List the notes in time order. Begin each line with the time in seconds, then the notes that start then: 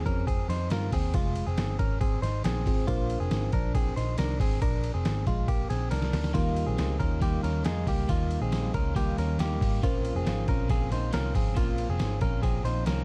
Already playing: C4 F4 G#4 C5
0.06 F2 C#4 A#4, kick, ride
0.27 C4 G#4, kick, ride
0.49 F2 D#4 C5, snare, ride
0.70 G2 F4 A#4, snare, ride
0.92 D#2 C4 G#4, kick, open hi-hat, ride
1.14 F1 G#3 F4, kick, ride
1.36 ride
1.47 F1 C4 G#4
1.58 G1, snare, ride
1.79 G#1 C#4 A#4, kick, ride
2.01 C4 G#4, kick, ride
2.22 G#1 D#4 C5, snare, ride
2.44 A#1 C4 G#4, snare, ride
2.66 G#1 C4 F4 G#4 C5, kick, open hi-hat, ride
2.87 A#1 A#3 D4 F4 A#4 C5, kick, ride
3.10 ride
3.20 F1 C4 G#4
3.31 G#1, snare, ride
3.52 A#1 D4 A#4, kick, ride
3.75 C4 G#4, kick, ride
3.96 A#1 D#4 C5, snare, ride
4.18 C2 D4 A#4, snare, ride
4.40 G#1 C4 G#4, kick, open hi-hat, ride
4.62 A#1 D4 A#4, kick, ride
4.84 ride
4.94 F1 C4 G#4
5.05 G#1, snare, ride
5.27 A#1 G#3 F4, kick, ride
5.48 A#3 G4, kick, ride
5.70 A#1 C4 G#4, snare, ride
5.91 C2 D4 A#4, snare, ride
6.02 snare
6.13 D2, snare, open hi-hat, ride
6.24 snare
6.33 D#2 D#3 G3 A#3 D#4 F4 G4 A#4, kick, ride
6.57 ride
6.67 A#1 C4 G#4
6.77 C#2 G3 A#3 D#4 F4, snare, ride
6.98 D#2 C#4 D#4 F4 A#4, kick, ride
7.02 A#3
7.21 D#3 G3 A#3 D#4 F4 G4, kick, ride
7.43 D#2 C#4 A#4, snare, ride
7.64 F2 G3 A#3 D#4 F4 G#4, snare, ride
7.87 C#2 A#3 G4, kick, open hi-hat, ride
8.08 D#2 D#3 G3 A#3 D#4 F4, kick, ride
8.31 ride
8.41 A#1 C4 G#4
8.51 G3 A#3 D#4 F4, snare, ride
8.73 C#2 A#3 C#4 D#4 F4 A#4, kick, ride
8.95 D#3 G3 A#3 D#4 F4 G4, kick, ride
9.18 D#2 C#4 A#4, snare, ride
9.39 D#2 G3 A#3 D#4 F4 G4, snare, ride
9.61 G#1, kick, open hi-hat, ride
9.82 A#1 A#2 F3 A#3 C4 C#4 F4 A#4 C5, kick, ride
10.05 ride
10.15 F1 C4 G#4
10.25 G#1 F3 C4 C#4 F4, snare, ride
10.46 A#1 C4 C#4 F4 A#4, kick, ride
10.50 C#4
10.68 A#2 F3 C4 C#4 F4 G#4, kick, ride
10.91 A#1 D#4 C5, snare, ride
11.11 C2 F3 C4 C#4 F4 A#4, snare, ride
11.35 G#1 C4 G#4, kick, open hi-hat, ride
11.54 A#1 A#2 F3 A#3 C4 C#4 F4, kick, ride
11.78 ride
11.89 F1 C4 G#4
11.99 G#1 F3 C4 C#4 F4, snare, ride
12.21 A#1 C4 C#4 F4 A#4, kick, ride
12.42 A#2 F3 C4 C#4 F4 G#4, kick, ride
12.64 A#1 D#4 C5, snare, ride
12.86 C2 F3 C4 C#4 F4 A#4, snare, ride